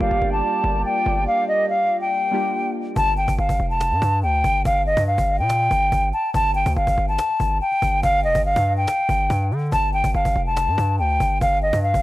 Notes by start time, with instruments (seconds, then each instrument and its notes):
Already playing: synth keys G3 A#3 D4 F4 G4, analog synth pad A#3 F4 D5 G5
0.00 808-style bass G1, flute F5
0.11 808-style bass G1
0.22 808-style bass G1
0.32 flute A5
0.64 808-style bass G1
0.85 flute G5
1.06 808-style bass G1
1.27 flute F5
1.48 flute D#5
1.70 flute F5
2.01 flute G5
2.31 synth keys G3 A#3 D4 F4 G4
2.96 808-style bass G1, flute A5, cajon bass
3.17 flute G5, cajon slap
3.28 808-style bass G1, cajon bass
3.38 808-style bass G1, flute F5, cajon slap
3.49 808-style bass G1, cajon bass
3.60 808-style bass F1, cajon slap
3.70 flute A5, cajon slap
3.80 cajon slap
3.91 808-style bass G2, cajon slap
4.02 808-style bass G2, cajon bass, cajon slap
4.23 808-style bass D2, flute G5, cajon slap
4.34 cajon slap
4.44 808-style bass G1, cajon bass
4.65 808-style bass G1, flute F5, cajon bass
4.76 cajon slap
4.86 flute D#5, cajon slap
4.97 808-style bass G2, cajon bass
5.07 flute F5, cajon slap
5.18 808-style bass G1, cajon bass
5.29 cajon slap
5.39 808-style bass A#2, flute G5, cajon slap
5.49 cajon slap
5.60 cajon slap
5.71 808-style bass G1, cajon bass, cajon slap
5.82 cajon slap
5.92 808-style bass G1, cajon bass
6.03 cajon slap
6.13 flute A5, cajon slap
6.34 808-style bass G1, flute A5, cajon bass
6.45 cajon slap
6.55 flute G5, cajon slap
6.66 808-style bass D2, cajon bass
6.76 808-style bass G1, flute F5, cajon slap
6.87 808-style bass G1, cajon bass
6.98 808-style bass G1, cajon slap
7.08 flute A5, cajon slap
7.18 cajon slap
7.29 cajon slap
7.40 808-style bass G1, cajon bass, cajon slap
7.51 cajon slap
7.61 flute G5, cajon slap
7.72 cajon slap
7.82 808-style bass G1, cajon bass
8.03 808-style bass G1, flute F5, cajon bass
8.14 cajon slap
8.24 808-style bass F1, flute D#5, cajon slap
8.35 808-style bass G1, cajon bass
8.45 flute F5, cajon slap
8.56 808-style bass G2, cajon bass
8.77 flute G5
8.87 cajon slap
8.98 cajon slap
9.09 808-style bass G1, cajon bass, cajon slap
9.20 cajon slap
9.30 808-style bass G2, cajon bass
9.41 cajon slap
9.51 808-style bass D3, cajon slap
9.58 cajon slap
9.65 cajon slap
9.72 808-style bass G1, flute A5, cajon bass
9.93 flute G5, cajon slap
10.04 808-style bass G1, cajon bass
10.14 808-style bass G1, flute F5, cajon slap
10.25 808-style bass G1, cajon bass
10.36 808-style bass F1, cajon slap
10.46 flute A5, cajon slap
10.56 cajon slap
10.67 808-style bass G2, cajon slap
10.78 808-style bass G2, cajon bass, cajon slap
10.99 808-style bass D2, flute G5, cajon slap
11.10 cajon slap
11.20 808-style bass G1, cajon bass
11.41 808-style bass G1, flute F5, cajon bass
11.52 cajon slap
11.62 flute D#5, cajon slap
11.73 808-style bass G2, cajon bass
11.83 flute F5
11.94 808-style bass G1, cajon bass